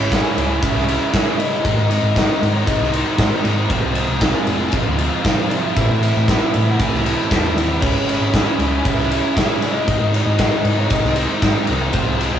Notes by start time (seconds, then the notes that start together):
Already playing: C#3 G#3 C#4 E4 G#4 C#5 G#5
0.11 G#1 C#3 G#3 C#4 E4 G#5, kick, snare, ride
0.36 C#2, ride
0.62 C#3 G#3 C#4 E4 E5, kick, ride
0.75 C2, snare
0.88 G#3 C#4 E4, ride
1.13 C#3 G#3 C#4 E4 E5, kick, snare, ride
1.39 G#3 C#4 E4 D#5, ride
1.63 G#1 G#2 D#3 G#3 C4 D#4 G#4 C5 G#5, kick, ride
1.77 G#2
1.90 G#3 C4 D#4 D#5, ride
2.03 G#2
2.15 G#1 D#3 G#3 C4 D#4, kick, snare, ride
2.42 G#2, ride
2.54 C#5
2.66 G#2 D#3 G#3 C4 D#4 D#5, kick, ride
2.80 C2, snare
2.91 C4 D#4 C5, ride
2.95 G#3
3.17 G#2 D#3 G#3 C4 D#4, kick, snare, ride
3.43 G#2 G#3 C4 D#4, ride
3.69 F1 F3 G#3 C4 F4 C5, kick, ride
3.83 C2
3.94 G#3 C4 F4, ride
4.08 C2
4.20 C2 F3 G#3 C4 F4 G#5, kick, snare, ride
4.47 F1, ride
4.71 F3 G#3 C4 F4 F5, kick, ride
4.87 D2
4.97 G#3 C4 F4, ride
5.23 F3 G#3 C4 F4 F5, kick, snare, ride
5.49 G#3 C4 F4 E5, ride
5.75 A1 A2 E3 A3 C4 E4 A4 A5, kick, ride
5.91 A2
6.02 A3 C4 E4 E5, ride
6.16 A2
6.28 A1 E3 A3 C4 E4, kick, snare, ride
6.54 A2, ride
6.69 F#5
6.78 A2 E3 A3 C4 E4 G#5, kick, ride
6.92 C2, snare
7.05 A3 C4 E4 A5, ride
7.29 E2 A2 E3 A3 C4, kick, snare, ride
7.33 E4
7.56 D#2 A3 C4 E4, ride
7.82 C#2 C#3 G#3 C#4 E4 G#4 C#5 G#5, kick, crash
7.95 G#1
8.08 G#3 C#4 E4, ride
8.20 G#1
8.33 G#1 C#3 G#3 C#4 E4 G#5, kick, snare, ride
8.58 C#2, ride
8.85 C#3 G#3 C#4 E4 E5, kick, ride
8.97 C2, snare
9.11 G#3 C#4 E4, ride
9.37 C#3 G#3 C#4 E4 E5, kick, snare, ride
9.61 G#3 C#4 E4 D#5, ride
9.86 G#1 G#2 D#3 G#3 C4 D#4 C5, kick, ride
10.00 G#2
10.14 G#3 C4 D#4 D#5, ride
10.26 G#2
10.39 G#1 D#3 G#3 C4 D#4, kick, snare, ride
10.65 G#2, ride
10.79 C#5
10.90 G#2 D#3 G#3 C4 D#4 D#5, kick, ride
11.03 C2, snare
11.16 G#3 C4 D#4 C5, ride
11.42 G#2 D#3 G#3 C4 D#4, kick, snare, ride
11.67 C2 G#3 C4 D#4, ride
11.93 F1 F3 G#3 C4 F4 G#4 C5, kick, ride
12.08 C2
12.20 G#3 C4 F4, ride
12.33 C2